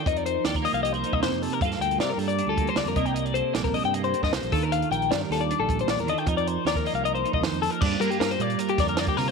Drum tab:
CC |----------------|----------------|----------------|----------------|
HH |xxx-xxoxxxx-xxox|xxxxx-oxx-xxxxxx|xxx-xxoxxxx-xxox|xxxxx-oxx-xxxxxx|
SD |----o-------o---|-o--o-------o---|----o------oo---|----o-o-----o---|
BD |o----o-----o----|o---------o---o-|-----o-----o--o-|----------o-----|

CC |----------------|x---------------|
HH |xxx-xxoxxxx-xxox|--xxxxxxxxxxxxo-|
SD |----o-------o---|----oo----o-o-o-|
BD |o----o-----o----|o---------o--o--|